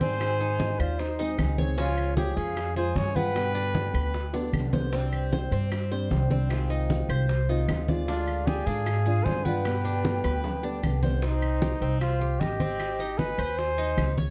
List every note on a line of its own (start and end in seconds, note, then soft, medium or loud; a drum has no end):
0.00 0.73 G#2 medium
0.00 0.18 D#3 soft
0.00 0.20 G3 medium
0.00 0.39 C4 medium
0.00 0.19 C4 medium
0.00 0.20 G4 medium
0.00 0.81 C5 loud
0.00 0.82 G#5 medium
0.00 high conga medium
0.00 maracas soft
0.19 0.98 D#3 medium
0.19 0.99 G#3 medium
0.19 0.98 C4 medium
0.19 0.99 D#4 medium
0.19 1.00 G#4 medium
0.19 high bongo medium
0.19 high conga soft
0.19 claves medium
0.19 maracas medium
0.40 0.79 D#4 medium
0.40 high bongo soft
0.40 high conga soft
0.40 maracas soft
0.60 high bongo soft
0.60 high conga medium
0.60 maracas medium
0.79 1.35 D#2 medium
0.79 1.01 F4 medium
0.79 1.18 C5 medium
0.79 1.01 D5 medium
0.79 high bongo soft
0.79 high conga soft
0.79 claves medium
0.79 maracas soft
0.99 1.39 D#4 medium
0.99 1.39 C5 medium
0.99 muted steel-string acoustic guitar stroke soft
0.99 high bongo medium
0.99 high conga soft
0.99 maracas medium
1.19 1.37 G#3 medium
1.19 1.38 C4 medium
1.19 1.57 D#4 medium
1.19 1.38 D#4 medium
1.19 1.38 G#4 medium
1.19 high bongo soft
1.19 high conga soft
1.19 maracas soft
1.38 2.31 C#2 medium
1.38 1.58 G#3 soft
1.38 1.58 C4 soft
1.38 1.58 D#4 medium
1.38 1.57 G#4 soft
1.38 high bongo medium
1.38 low bongo medium
1.38 high conga medium
1.38 claves medium
1.38 maracas medium
1.58 1.78 G#3 soft
1.58 1.78 C4 medium
1.58 1.78 D#4 medium
1.58 1.77 G#4 medium
1.58 1.77 C#5 medium
1.58 high conga medium
1.58 maracas soft
1.78 2.56 C#3 medium
1.78 2.56 F3 medium
1.78 2.56 G#3 medium
1.78 2.16 C#4 medium
1.78 2.56 C#4 medium
1.78 2.15 F4 medium
1.78 2.57 F4 medium
1.78 2.15 C#5 medium
1.78 high bongo medium
1.78 high conga soft
1.78 maracas medium
1.97 high conga soft
1.97 claves medium
1.97 maracas soft
2.17 2.38 G4 medium
2.17 2.36 G#4 medium
2.17 2.39 C#5 medium
2.17 high bongo medium
2.17 high conga medium
2.17 maracas medium
2.37 2.92 F2 medium
2.37 2.75 C#4 medium
2.37 2.76 G#4 medium
2.37 2.76 F5 medium
2.37 maracas soft
2.56 muted steel-string acoustic guitar stroke medium
2.56 high bongo medium
2.56 high conga soft
2.56 claves medium
2.56 maracas medium
2.76 2.95 F3 medium
2.76 2.95 G#3 medium
2.76 2.96 C#4 medium
2.76 2.95 F4 medium
2.76 3.15 G#4 medium
2.76 2.98 C5 medium
2.76 2.96 G#5 medium
2.76 high conga soft
2.76 maracas soft
2.95 3.88 G2 medium
2.95 3.15 F3 soft
2.95 3.15 G#3 medium
2.95 3.15 C#4 medium
2.95 3.14 F4 medium
2.95 3.17 C#5 medium
2.95 3.17 G#5 medium
2.95 high bongo medium
2.95 low bongo medium
2.95 high conga medium
2.95 maracas medium
3.15 3.35 F3 medium
3.15 3.35 G#3 medium
3.15 3.54 B3 medium
3.15 3.35 C#4 medium
3.15 3.34 F4 medium
3.15 4.34 B4 loud
3.15 4.34 G5 medium
3.15 high conga medium
3.15 maracas soft
3.35 4.13 B2 medium
3.35 4.13 D3 medium
3.35 4.14 G3 medium
3.35 4.14 B3 medium
3.35 4.14 G4 medium
3.35 high bongo medium
3.35 high conga soft
3.35 claves medium
3.35 maracas medium
3.55 3.93 D4 medium
3.55 high bongo soft
3.55 high conga soft
3.55 maracas soft
3.75 high bongo medium
3.75 high conga medium
3.75 maracas medium
3.94 4.49 D2 medium
3.94 4.33 B4 medium
3.94 high bongo soft
3.94 high conga soft
3.94 claves medium
3.94 maracas soft
4.14 muted steel-string acoustic guitar stroke soft
4.14 high bongo medium
4.14 high conga soft
4.14 maracas medium
4.33 4.52 D3 medium
4.33 4.52 G3 medium
4.33 4.53 B3 medium
4.33 4.72 D4 medium
4.33 4.52 G4 medium
4.33 high bongo medium
4.33 high conga soft
4.33 maracas soft
4.53 5.46 C2 medium
4.53 4.72 D3 soft
4.53 4.72 G3 medium
4.53 4.72 B3 medium
4.53 4.71 G4 medium
4.53 high conga medium
4.53 claves medium
4.53 maracas medium
4.60 low bongo medium
4.73 4.93 D3 medium
4.73 4.92 G3 soft
4.73 4.92 B3 medium
4.73 4.92 G4 medium
4.73 4.92 C5 medium
4.73 low bongo medium
4.73 high conga medium
4.73 maracas soft
4.92 5.71 C3 medium
4.92 5.71 G3 medium
4.92 5.31 C4 medium
4.92 5.72 C4 medium
4.92 5.71 D4 medium
4.92 5.71 G4 medium
4.92 high bongo medium
4.92 high conga soft
4.92 maracas medium
5.13 high conga soft
5.13 claves medium
5.13 maracas soft
5.32 5.52 C5 medium
5.32 high bongo medium
5.32 high conga loud
5.32 maracas medium
5.51 6.07 G2 medium
5.51 5.90 C4 medium
5.51 maracas soft
5.71 muted steel-string acoustic guitar stroke medium
5.71 high bongo medium
5.71 high conga soft
5.71 claves medium
5.71 maracas medium
5.91 6.10 G3 medium
5.91 6.10 C4 medium
5.91 6.10 D4 medium
5.91 6.10 G4 medium
5.91 6.30 C5 medium
5.91 high conga soft
5.91 maracas soft
6.11 7.03 C2 medium
6.11 6.30 G3 medium
6.11 6.30 C4 soft
6.11 6.30 D4 medium
6.11 6.29 G4 medium
6.11 high bongo medium
6.11 low bongo medium
6.11 high conga medium
6.11 maracas medium
6.30 6.50 G3 medium
6.30 6.69 C4 medium
6.30 6.50 C4 medium
6.30 6.50 D4 medium
6.30 6.49 G4 medium
6.30 high conga medium
6.30 maracas soft
6.50 7.28 C3 medium
6.50 7.28 D#3 medium
6.50 7.29 G#3 medium
6.50 7.29 C4 medium
6.50 7.30 F4 medium
6.50 high bongo medium
6.50 high conga soft
6.50 claves medium
6.50 maracas medium
6.70 7.08 D#4 medium
6.70 high bongo soft
6.70 high conga soft
6.70 maracas soft
6.90 high bongo medium
6.90 high conga loud
6.90 maracas medium
7.09 7.64 C2 medium
7.09 7.48 C5 medium
7.09 high bongo soft
7.09 high conga soft
7.09 claves medium
7.09 maracas soft
7.29 muted steel-string acoustic guitar stroke medium
7.29 high bongo medium
7.29 high conga soft
7.29 maracas medium
7.49 7.67 D#3 medium
7.49 7.68 G#3 medium
7.49 7.68 C4 medium
7.49 7.87 D#4 medium
7.49 7.68 F4 medium
7.49 high bongo soft
7.49 high conga soft
7.49 maracas soft
7.68 8.61 D2 medium
7.68 7.87 D#3 soft
7.68 7.88 G#3 soft
7.68 7.88 C4 medium
7.68 7.87 F4 medium
7.68 high bongo medium
7.68 low bongo medium
7.68 high conga medium
7.68 claves medium
7.68 maracas medium
7.88 8.07 D#3 medium
7.88 8.08 G#3 medium
7.88 8.07 C4 medium
7.88 8.07 F4 medium
7.88 8.07 D5 medium
7.88 high conga medium
7.88 maracas soft
8.08 8.85 D3 medium
8.08 8.86 G#3 medium
8.08 8.46 D4 medium
8.08 8.87 D4 medium
8.08 8.48 F4 medium
8.08 8.86 F4 medium
8.08 8.47 D5 medium
8.08 high bongo medium
8.08 high conga soft
8.08 maracas medium
8.28 high conga soft
8.28 claves medium
8.28 maracas soft
8.46 8.67 G4 medium
8.46 8.66 G#4 medium
8.46 8.68 D5 medium
8.46 high bongo medium
8.46 high conga loud
8.46 maracas medium
8.66 9.22 G#2 medium
8.66 9.05 D4 medium
8.66 9.25 G#4 medium
8.66 9.26 F5 medium
8.66 maracas soft
8.86 muted steel-string acoustic guitar stroke medium
8.86 high bongo medium
8.86 high conga soft
8.86 claves medium
8.86 maracas medium
9.06 9.25 G#3 medium
9.06 9.26 D4 medium
9.06 9.25 F4 medium
9.06 9.44 G#4 medium
9.06 high conga soft
9.06 maracas soft
9.24 10.18 G2 medium
9.24 9.45 D3 medium
9.24 9.45 G#3 medium
9.24 9.45 D4 soft
9.24 9.44 F4 medium
9.24 9.46 C5 loud
9.24 9.46 G#5 medium
9.24 high bongo medium
9.24 low bongo medium
9.24 high conga medium
9.24 maracas medium
9.44 9.65 G#3 soft
9.44 9.83 B3 medium
9.44 9.65 D4 medium
9.44 9.64 F4 medium
9.44 11.02 B4 medium
9.44 11.03 G5 medium
9.44 high conga medium
9.44 maracas soft
9.65 10.42 B2 medium
9.65 10.43 D3 medium
9.65 10.43 G3 medium
9.65 10.43 B3 medium
9.65 10.43 G4 medium
9.65 high bongo medium
9.65 high conga soft
9.65 claves medium
9.65 maracas medium
9.85 10.23 D4 medium
9.85 high bongo soft
9.85 high conga soft
9.85 maracas soft
10.04 high bongo medium
10.04 high conga medium
10.04 maracas medium
10.24 10.79 D2 medium
10.24 10.62 B4 medium
10.24 high bongo medium
10.24 high conga soft
10.24 claves medium
10.24 maracas soft
10.44 muted steel-string acoustic guitar stroke soft
10.44 low bongo loud
10.44 high conga soft
10.44 maracas medium
10.63 10.81 D3 medium
10.63 10.82 G3 medium
10.63 10.82 B3 medium
10.63 11.02 D4 medium
10.63 10.82 G4 medium
10.63 high conga soft
10.63 maracas soft
10.82 11.76 C2 medium
10.82 11.02 D3 medium
10.82 11.02 G3 soft
10.82 11.02 B3 soft
10.82 11.02 G4 medium
10.82 low bongo medium
10.82 high conga medium
10.82 claves medium
10.82 maracas medium
11.03 11.22 D3 soft
11.03 11.22 G3 medium
11.03 11.22 B3 medium
11.03 11.22 G4 medium
11.03 11.22 C5 medium
11.03 low bongo medium
11.03 high conga medium
11.03 maracas soft
11.22 11.61 C4 medium
11.22 11.98 D#4 medium
11.22 11.97 C5 medium
11.22 high bongo medium
11.22 high conga soft
11.22 maracas medium
11.42 high conga soft
11.42 claves medium
11.42 maracas soft
11.62 11.81 G4 medium
11.62 high bongo medium
11.62 high conga loud
11.62 maracas medium
11.81 12.36 C2 medium
11.81 12.20 C4 medium
11.81 maracas soft
12.01 12.41 F4 medium
12.01 12.41 C5 medium
12.01 high bongo medium
12.01 high conga soft
12.01 claves medium
12.01 maracas medium
12.21 12.59 G4 medium
12.21 high conga soft
12.21 maracas soft
12.40 13.33 G#1 medium
12.40 13.20 G4 medium
12.40 13.19 D#5 medium
12.40 high bongo medium
12.40 low bongo medium
12.40 high conga medium
12.40 maracas medium
12.60 12.98 C4 medium
12.60 high conga medium
12.60 maracas soft
12.80 high bongo medium
12.80 high conga soft
12.80 claves medium
12.80 maracas medium
12.99 13.38 D#4 medium
12.99 high bongo soft
12.99 high conga soft
12.99 maracas soft
13.18 13.60 B4 medium
13.18 13.57 G#5 medium
13.18 high bongo medium
13.18 high conga medium
13.18 maracas medium
13.38 13.94 D#2 medium
13.38 13.77 C5 medium
13.38 high bongo soft
13.38 high conga soft
13.38 claves medium
13.38 maracas soft
13.57 14.17 C5 loud
13.57 14.07 G#5 medium
13.57 high bongo medium
13.57 high conga soft
13.57 maracas medium
13.78 14.16 D#4 medium
13.78 high bongo soft
13.78 high conga soft
13.78 maracas soft
13.97 14.30 C#2 medium
13.97 high bongo medium
13.97 low bongo medium
13.97 high conga medium
13.97 claves medium
13.97 maracas medium
14.18 14.30 C#5 medium
14.18 high conga medium
14.18 maracas soft